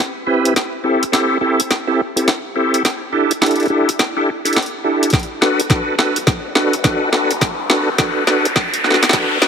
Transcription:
0.27 C4 E4 G4 B4
0.45 closed hi-hat
0.56 snare, closed hi-hat
0.84 C4 E4 G4 A4
1.03 closed hi-hat
1.12 C4 E4 G4 A4, snare, closed hi-hat
1.41 C4 E4 G4 A4
1.60 closed hi-hat
1.71 snare, closed hi-hat
1.87 C4 E4 G4 A4
2.16 C4 E4 G4 A4, closed hi-hat
2.28 snare, closed hi-hat
2.56 C4 E4 G4 A4
2.74 closed hi-hat
2.85 snare, closed hi-hat
3.13 D4 E4 G4 A4
3.31 closed hi-hat
3.41 D4 E4 G4 A4, snare, closed hi-hat
3.46 closed hi-hat
3.51 closed hi-hat
3.56 closed hi-hat
3.60 closed hi-hat
3.63 closed hi-hat
3.66 closed hi-hat
3.68 D4 E4 G4 A4, closed hi-hat
3.89 closed hi-hat
3.99 snare, closed hi-hat
4.17 D4 E4 G4 A4
4.45 D4 E4 G4 A4, closed hi-hat
4.53 snare, closed hi-hat
4.56 closed hi-hat
4.62 closed hi-hat
4.66 closed hi-hat
4.84 D4 E4 G4 A4
5.03 closed hi-hat
5.10 kick, snare, closed hi-hat, riser
5.13 closed hi-hat
5.19 closed hi-hat
5.23 closed hi-hat
5.41 D4 F#4 A4 B4, snare
5.60 closed hi-hat
5.70 D4 F#4 A4 B4, kick, snare, closed hi-hat
5.98 D4 F#4 A4 B4, snare
6.16 closed hi-hat
6.27 kick, snare, closed hi-hat
6.55 D4 F#4 A4 B4, snare
6.73 closed hi-hat
6.84 D4 F#4 A4 B4, kick, snare, closed hi-hat
7.12 D4 F#4 A4 B4, snare
7.31 closed hi-hat
7.41 kick, snare, closed hi-hat
7.70 D4 F#4 A4 B4, snare
7.98 D4 F#4 A4 B4, kick, snare, closed hi-hat
8.27 D4 F#4 A4 B4, snare
8.45 closed hi-hat
8.56 kick, snare
8.74 closed hi-hat
8.84 D4 F#4 A4 B4, snare
8.91 snare
8.94 snare
9.03 snare, closed hi-hat
9.09 D4 F#4 A4 B4, kick, snare
9.13 snare, closed hi-hat
9.41 D4 F#4 A4 B4, snare

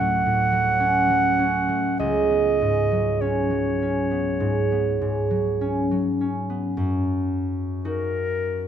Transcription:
Already playing: D2 A2 F#3 C#4 F#5
0.00 A3
0.26 A2
0.52 F#3
0.80 C#4
1.10 F#3
1.39 C#4
1.69 A3
1.99 C#2 D#5
2.30 B3
2.62 G#2
2.91 F#3
3.21 C#4 C#5
3.51 F#3
3.82 C#4
4.11 B3
4.40 G#2
4.72 B3
5.01 G#2
5.31 F#3
5.61 C#4
5.91 F#3
6.21 C#4
6.50 B3
6.77 F#2
7.85 D#4 F#4 A#4

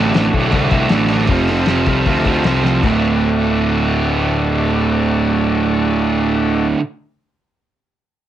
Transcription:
Already playing: A1 D2 F#4 A4 D5
0.00 A2 D3
0.14 A1 D2 A2 D3, snare, open hi-hat
0.33 B1 D2 A2 D3, kick, open hi-hat
0.50 C2 D2 A2 D3, kick, open hi-hat
0.70 D2 A2 D3, kick, open hi-hat
0.89 A1 D2 A2 D3, snare, open hi-hat
1.08 D2 A2 D3, open hi-hat
1.27 F1 F2 C3 F4 A4, kick, open hi-hat
1.31 F3 C5
1.48 F2 C3 F3, open hi-hat
1.66 F1 F2 C3 F3, snare, open hi-hat
1.86 C2 F2 C3 F3, kick, open hi-hat
2.06 D2 F2 C3 F3, kick, open hi-hat
2.25 F2 C3 F3, kick, open hi-hat
2.44 C2 F2 C3 F3, snare, open hi-hat
2.63 F2 C3 F3, snare
2.82 D1 D2 A2 F#4 A4 D5, kick, crash
2.86 D3

